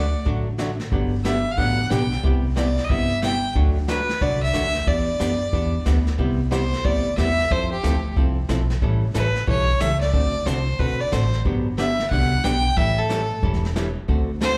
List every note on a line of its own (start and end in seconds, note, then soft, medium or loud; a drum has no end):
0.00 0.13 D2 medium
0.00 0.26 D5 medium
0.25 0.79 A1 medium
0.25 0.47 D3 medium
0.25 0.47 F#3 medium
0.25 0.47 A3 medium
0.25 0.47 D4 medium
0.25 0.48 F#4 medium
0.25 brush sweep soft
0.25 kick soft
0.58 0.70 D3 medium
0.58 0.70 F#3 medium
0.58 0.70 A3 medium
0.58 0.71 D4 medium
0.58 0.71 F#4 medium
0.58 snare medium
0.58 hi-hat pedal medium
0.80 snare soft
0.92 1.45 G1 medium
0.92 1.13 D3 medium
0.92 1.14 F#3 medium
0.92 1.14 B3 medium
0.92 1.14 D4 medium
0.92 1.14 G4 medium
0.92 brush sweep soft
0.92 kick soft
1.25 1.36 D3 medium
1.25 1.36 F#3 medium
1.25 1.37 B3 medium
1.25 1.37 D4 medium
1.25 1.37 G4 medium
1.25 1.53 E5 medium
1.25 snare medium
1.25 hi-hat pedal medium
1.51 1.59 F5 medium
1.57 1.86 A1 medium
1.57 1.79 D3 medium
1.57 1.79 F#3 medium
1.57 1.79 B3 medium
1.57 1.80 D4 medium
1.57 1.80 G4 medium
1.57 1.86 F#5 medium
1.57 brush sweep medium
1.57 kick soft
1.86 1.92 F#5 medium
1.90 2.19 B1 medium
1.90 2.02 D3 medium
1.90 2.02 F#3 medium
1.90 2.02 B3 medium
1.90 2.02 D4 medium
1.90 2.02 G4 medium
1.90 2.24 G5 medium
1.90 snare medium
1.90 hi-hat pedal soft
2.12 snare soft
2.23 2.76 C2 medium
2.23 2.45 C3 medium
2.23 2.45 G3 medium
2.23 2.45 B3 medium
2.23 2.45 E4 medium
2.23 2.45 G4 medium
2.23 brush sweep soft
2.23 kick soft
2.56 2.68 C3 medium
2.56 2.68 G3 medium
2.56 2.68 B3 medium
2.56 2.68 E4 medium
2.56 2.68 G4 medium
2.56 2.86 D5 medium
2.56 snare medium
2.56 hi-hat pedal medium
2.78 snare soft
2.84 2.91 D#5 medium
2.89 3.42 G1 medium
2.89 3.11 C3 medium
2.89 3.11 G3 medium
2.89 3.11 B3 medium
2.89 3.11 E4 medium
2.89 3.11 G4 medium
2.89 3.22 E5 medium
2.89 brush sweep medium
2.89 kick soft
3.22 3.34 C3 medium
3.22 3.34 G3 medium
3.22 3.34 B3 medium
3.22 3.34 E4 medium
3.22 3.34 G4 medium
3.22 3.54 G5 medium
3.22 snare medium
3.22 hi-hat pedal soft
3.55 4.08 D2 medium
3.55 3.77 D3 medium
3.55 3.77 F#3 medium
3.55 3.77 A3 medium
3.55 3.77 D4 medium
3.55 3.77 F#4 medium
3.55 brush sweep medium
3.55 kick soft
3.88 4.00 D3 medium
3.88 4.00 F#3 medium
3.88 4.00 A3 medium
3.88 4.00 D4 medium
3.88 4.00 F#4 medium
3.88 4.23 B4 medium
3.88 snare medium
3.88 hi-hat pedal soft
4.09 snare soft
4.21 4.49 C2 medium
4.21 4.43 D3 medium
4.21 4.43 F#3 medium
4.21 4.43 A3 medium
4.21 4.43 D4 medium
4.21 4.43 F#4 medium
4.21 4.42 D5 loud
4.21 brush sweep soft
4.21 kick soft
4.43 4.89 E5 loud
4.53 4.82 D2 medium
4.53 4.65 D3 medium
4.53 4.65 F#3 medium
4.53 4.65 A3 medium
4.53 4.66 D4 medium
4.53 4.66 F#4 medium
4.53 snare medium
4.53 hi-hat pedal medium
4.75 snare soft
4.87 5.13 E2 medium
4.87 5.08 E3 medium
4.87 5.08 B3 medium
4.87 5.08 D4 medium
4.87 5.09 G4 medium
4.87 5.86 D5 medium
4.87 brush sweep soft
4.87 kick soft
5.19 5.48 F#2 medium
5.19 5.31 E3 medium
5.19 5.31 B3 medium
5.19 5.31 D4 medium
5.19 5.32 G4 medium
5.19 snare medium
5.19 hi-hat pedal medium
5.52 5.81 E2 medium
5.52 5.74 E3 medium
5.52 5.74 B3 medium
5.52 5.74 D4 medium
5.52 5.74 G4 medium
5.52 brush sweep soft
5.52 kick soft
5.85 6.14 D2 medium
5.85 5.97 E3 medium
5.85 5.97 B3 medium
5.85 5.97 D4 medium
5.85 5.98 G4 medium
5.85 snare medium
5.85 hi-hat pedal medium
6.07 snare soft
6.18 6.71 C2 medium
6.18 6.40 C3 medium
6.18 6.40 G3 medium
6.18 6.40 B3 medium
6.18 6.40 E4 medium
6.18 6.40 G4 medium
6.18 brush sweep soft
6.18 kick soft
6.51 6.63 C3 medium
6.51 6.63 G3 medium
6.51 6.63 B3 medium
6.51 6.63 E4 medium
6.51 6.63 G4 medium
6.51 6.86 C5 medium
6.51 snare medium
6.51 hi-hat pedal medium
6.73 snare soft
6.84 7.13 D2 medium
6.84 7.06 C3 medium
6.84 7.06 G3 soft
6.84 7.06 B3 medium
6.84 7.06 E4 medium
6.84 7.06 G4 medium
6.84 7.17 D5 medium
6.84 brush sweep soft
6.84 kick soft
7.17 7.45 E2 medium
7.17 7.29 C3 medium
7.17 7.29 G3 medium
7.17 7.29 B3 medium
7.17 7.29 E4 medium
7.17 7.29 G4 medium
7.17 7.53 E5 loud
7.17 snare medium
7.17 hi-hat pedal soft
7.39 snare soft
7.50 7.77 F2 medium
7.50 7.72 F3 medium
7.50 7.72 C4 medium
7.50 7.72 E4 medium
7.50 7.72 A4 medium
7.50 7.71 C5 loud
7.50 brush sweep medium
7.50 kick soft
7.72 8.13 G4 medium
7.83 8.11 D2 medium
7.83 7.95 F3 medium
7.83 7.95 C4 medium
7.83 7.95 E4 medium
7.83 7.95 A4 medium
7.83 snare medium
7.83 hi-hat pedal medium
8.16 8.44 C2 medium
8.16 8.38 F3 medium
8.16 8.38 C4 medium
8.16 8.38 E4 medium
8.16 8.38 A4 medium
8.16 brush sweep soft
8.16 kick soft
8.49 8.77 B1 medium
8.49 8.60 F3 medium
8.49 8.61 C4 medium
8.49 8.61 E4 medium
8.49 8.61 A4 medium
8.49 snare medium
8.49 hi-hat pedal medium
8.70 snare soft
8.82 9.08 A1 medium
8.82 9.03 E3 medium
8.82 9.03 G3 medium
8.82 9.03 C#4 medium
8.82 9.04 E4 medium
8.82 9.04 A4 medium
8.82 brush sweep soft
8.82 kick soft
9.14 9.43 A1 medium
9.14 9.26 E3 medium
9.14 9.26 G3 medium
9.14 9.26 C#4 medium
9.14 9.26 E4 medium
9.14 9.26 A4 medium
9.14 9.46 B4 medium
9.14 snare medium
9.14 hi-hat pedal medium
9.36 snare soft
9.47 9.75 B1 medium
9.47 9.69 E3 medium
9.47 9.69 G3 medium
9.47 9.69 C#4 medium
9.47 9.69 E4 medium
9.47 9.69 A4 medium
9.47 9.82 C#5 loud
9.47 brush sweep soft
9.47 kick soft
9.80 10.09 C#2 medium
9.80 9.92 E3 medium
9.80 9.92 G3 medium
9.80 9.92 C#4 medium
9.80 9.92 E4 medium
9.80 9.92 A4 medium
9.80 10.00 E5 loud
9.80 snare medium
9.80 hi-hat pedal medium
10.01 10.48 D5 loud
10.01 snare soft
10.13 10.40 D2 medium
10.13 10.35 D3 medium
10.13 10.35 A3 medium
10.13 10.35 C4 medium
10.13 10.35 F#4 medium
10.13 10.35 A4 medium
10.13 brush sweep medium
10.13 kick soft
10.46 10.74 C2 medium
10.46 10.57 D3 medium
10.46 10.58 A3 medium
10.46 10.58 C4 medium
10.46 10.58 F#4 medium
10.46 10.58 A4 medium
10.46 10.81 C5 medium
10.46 snare medium
10.46 hi-hat pedal medium
10.79 11.07 B1 medium
10.79 11.01 D3 medium
10.79 11.01 A3 medium
10.79 11.01 C4 medium
10.79 11.01 F#4 medium
10.79 11.01 A4 medium
10.79 11.02 B4 medium
10.79 brush sweep medium
10.79 kick soft
11.00 11.14 D5 medium
11.12 11.40 A1 medium
11.12 11.24 D3 medium
11.12 11.24 A3 medium
11.12 11.24 C4 medium
11.12 11.24 F#4 medium
11.12 11.24 A4 medium
11.12 11.39 C5 medium
11.12 snare medium
11.12 hi-hat pedal soft
11.33 snare soft
11.45 11.98 G1 medium
11.45 11.66 D3 medium
11.45 11.66 F#3 medium
11.45 11.67 B3 medium
11.45 11.67 D4 medium
11.45 11.67 G4 medium
11.45 brush sweep soft
11.45 kick soft
11.78 11.89 D3 medium
11.78 11.89 F#3 medium
11.78 11.90 B3 medium
11.78 11.90 D4 medium
11.78 11.90 G4 medium
11.78 12.08 E5 medium
11.78 snare medium
11.78 hi-hat pedal medium
11.99 snare soft
12.10 12.39 C2 medium
12.10 12.32 D3 medium
12.10 12.32 F#3 medium
12.10 12.32 B3 medium
12.10 12.33 D4 medium
12.10 12.33 G4 medium
12.10 12.46 F#5 loud
12.10 brush sweep medium
12.10 kick soft
12.44 12.72 B1 medium
12.44 12.55 D3 medium
12.44 12.55 F#3 medium
12.44 12.55 B3 medium
12.44 12.55 D4 medium
12.44 12.56 G4 medium
12.44 12.78 G5 loud
12.44 snare medium
12.44 hi-hat pedal medium
12.77 13.30 A1 medium
12.77 12.98 E3 medium
12.77 12.98 G3 medium
12.77 12.98 C#4 medium
12.77 12.98 E4 medium
12.77 12.98 A4 medium
12.77 13.00 E5 loud
12.77 brush sweep soft
12.77 kick soft
12.98 13.43 A4 medium
13.09 13.21 E3 medium
13.09 13.21 G3 medium
13.09 13.21 C#4 medium
13.09 13.21 E4 medium
13.09 13.21 A4 medium
13.09 snare medium
13.09 hi-hat pedal medium
13.42 13.95 E1 medium
13.42 13.64 E3 medium
13.42 13.64 G3 medium
13.42 13.64 C#4 medium
13.42 13.64 E4 medium
13.42 13.64 A4 medium
13.42 brush sweep soft
13.42 kick soft
13.54 snare soft
13.65 snare soft
13.76 13.87 E3 medium
13.76 13.87 G3 medium
13.76 13.87 C#4 medium
13.76 13.87 E4 medium
13.76 13.87 A4 medium
13.76 snare medium
13.76 hi-hat pedal soft
14.08 14.58 D2 medium
14.08 14.30 D3 medium
14.08 14.30 A3 medium
14.08 14.30 C4 medium
14.08 14.30 F#4 medium
14.08 14.30 A4 medium
14.08 brush sweep medium
14.08 kick soft
14.41 14.53 D3 medium
14.41 14.53 A3 medium
14.41 14.53 C4 medium
14.41 14.53 F#4 medium
14.41 14.53 A4 medium
14.41 14.58 C5 loud
14.41 snare medium
14.41 hi-hat pedal medium